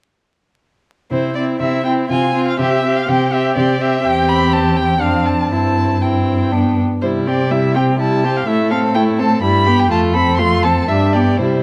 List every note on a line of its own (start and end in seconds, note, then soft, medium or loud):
1.11 1.52 C3 soft
1.11 1.35 C4 soft
1.11 1.35 E4 soft
1.11 1.34 C5 soft
1.35 1.60 C4 soft
1.35 1.60 E4 soft
1.35 1.43 D5 soft
1.60 2.02 C3 soft
1.60 1.85 C4 soft
1.60 1.84 E4 soft
1.60 1.84 E5 soft
1.85 2.10 C4 soft
1.85 2.09 E4 soft
1.85 1.93 G5 soft
2.10 2.51 C3 soft
2.10 2.34 C4 soft
2.10 2.34 F4 soft
2.10 2.46 G#5 medium
2.34 2.59 C4 soft
2.34 2.58 F4 soft
2.48 2.59 F5 soft
2.59 3.00 C3 soft
2.59 2.83 C4 soft
2.59 2.83 G4 soft
2.59 2.99 E5 medium
2.84 3.08 C4 soft
2.84 3.08 G4 soft
2.97 3.10 F5 medium
3.08 3.49 C3 medium
3.08 3.32 C4 soft
3.08 3.32 G4 soft
3.08 3.35 G5 medium
3.32 3.56 C4 soft
3.32 3.56 G4 soft
3.32 3.56 E5 medium
3.56 3.97 C3 soft
3.56 3.80 C4 soft
3.56 3.80 G4 soft
3.56 3.83 D5 medium
3.80 4.03 C4 soft
3.80 4.04 G4 soft
3.80 4.06 E5 medium
4.04 5.03 E2 soft
4.04 4.97 C4 soft
4.04 4.97 G4 soft
4.04 4.30 G5 medium
4.29 4.55 B5 medium
4.53 4.78 A5 soft
4.77 5.03 G5 medium
5.01 5.49 F2 soft
5.01 5.50 C4 soft
5.01 5.53 D4 soft
5.01 5.28 F5 soft
5.26 5.49 A5 soft
5.50 6.79 G2 soft
5.50 6.01 C4 soft
5.50 6.02 E4 soft
5.50 6.03 A5 soft
6.02 6.54 C4 soft
6.02 6.54 E4 soft
6.02 6.77 G5 soft
6.52 6.82 B3 soft
6.52 6.82 D4 soft
7.01 8.43 C3 soft
7.01 7.28 G3 soft
7.01 7.28 E4 soft
7.01 7.10 C5 soft
7.27 7.52 C4 soft
7.27 7.53 G4 soft
7.27 7.53 D5 soft
7.51 7.77 G3 soft
7.51 7.78 E4 soft
7.51 7.75 E5 soft
7.76 7.99 C4 soft
7.76 7.99 G4 soft
7.76 7.84 G5 soft
8.00 8.26 G3 soft
8.00 8.26 E4 soft
8.00 8.39 A5 soft
8.24 8.47 C4 soft
8.24 8.47 G4 soft
8.37 8.49 F5 soft
8.47 9.41 A2 soft
8.47 8.73 A3 soft
8.47 8.72 E4 soft
8.47 8.70 E5 medium
8.71 8.96 C4 soft
8.71 8.97 A4 soft
8.71 8.79 F5 medium
8.94 9.21 A3 soft
8.94 9.21 E4 soft
8.94 9.02 G5 medium
9.18 9.43 C4 soft
9.18 9.42 A4 soft
9.18 9.42 A5 medium
9.43 9.90 G2 soft
9.43 9.69 G3 soft
9.43 9.68 E4 soft
9.43 9.81 B5 medium
9.66 9.91 B3 soft
9.66 9.90 G4 soft
9.80 9.90 G5 medium
9.90 10.86 F2 soft
9.90 10.17 A3 soft
9.90 10.16 F4 soft
9.90 9.99 A5 medium
10.14 10.41 C4 soft
10.14 10.40 A4 soft
10.14 10.37 B5 medium
10.38 10.66 A3 soft
10.38 10.66 F4 soft
10.38 10.65 C6 medium
10.63 10.89 C4 soft
10.63 10.88 A4 soft
10.63 10.89 A5 medium
10.88 11.41 G2 soft
10.88 11.16 G3 soft
10.88 11.16 D4 soft
10.88 11.15 E5 soft
11.13 11.40 B3 soft
11.13 11.40 G4 soft
11.13 11.39 D5 soft
11.38 11.63 C3 soft
11.38 11.63 G3 soft
11.38 11.63 E4 soft
11.38 11.63 C5 soft